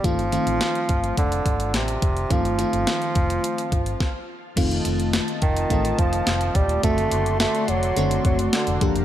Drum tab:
CC |----------------|----------------|x---------------|----------------|
HH |xxxxxxxxxxxxxxxx|xxxxxxxxxxxx----|xxxxxxxxxxxxxxxx|xxxxxxxxxxxxxxxx|
SD |----o-------o---|----o-------o---|----o-------o---|----o-------o---|
BD |o-----o-o-o---o-|o-----o---o-o---|o-----o-o-o---o-|o---------o---o-|